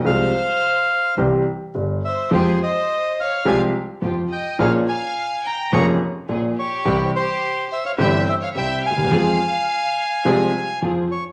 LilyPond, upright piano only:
\new Staff \with { instrumentName = "Upright piano" } { \clef bass \time 4/4 \key f \minor \tempo 4 = 106 <c, c f aes c' aes'>8 r4. <c, c e g c' g'>8 r8 <g,, g,>8 r8 | <f, f aes c' g'>8 r4. <c, c f aes c' g'>8 r8 <f, f>8 r8 | <bes,, bes, f bes des' aes'>8 r4. <f,, f, f bes des' aes'>8 r8 <bes,, bes,>8 r8 | <c, c e g c' g'>8 r4. <g,, g, e g c' g'>8 r8 <c, c>8 r32 d,32 ees,32 e,32 |
<f, f aes c' aes'>8 r4. <c, c f aes c' aes'>8 r8 <f, f>8 r8 | }